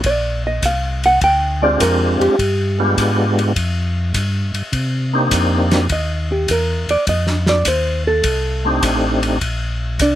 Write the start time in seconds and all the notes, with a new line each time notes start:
0.04 A#1 D5, kick, ride
0.47 D#5
0.62 C2 F5, kick, hi-hat pedal, ride
1.04 F#5, ride
1.21 D2 G5, kick, ride
1.62 G#3 C4 D4 F4 G4 D5
1.80 F2 A#4, kick, hi-hat pedal, ride
2.20 F2 G4, ride
2.39 G2, kick, ride
2.79 G#3 B3 D4 F4 G4
2.97 G#2, kick, hi-hat pedal, ride
3.39 ride
3.56 F2, kick, ride
4.14 G2, kick, hi-hat pedal, ride
4.54 G2, ride
4.72 C3, kick, ride
5.13 A#3 C4 D4 D#4 G4
5.31 F2, kick, hi-hat pedal, ride
5.71 snare, ride
5.89 D#2 D#5, kick, ride
6.32 G4
6.48 E2 A#4, kick, hi-hat pedal, ride
6.88 E2 D5, ride
7.07 F2 D#5, kick, ride
7.27 snare
7.46 D5, snare
7.65 D#2 C5, kick, hi-hat pedal, ride
8.07 A4
8.24 C2, kick, ride
8.65 A3 C4 D4 D#4 G4
8.82 A1, kick, hi-hat pedal, ride
9.23 ride
9.41 A#1, kick, ride
9.99 C2 D4 D5, kick, hi-hat pedal, ride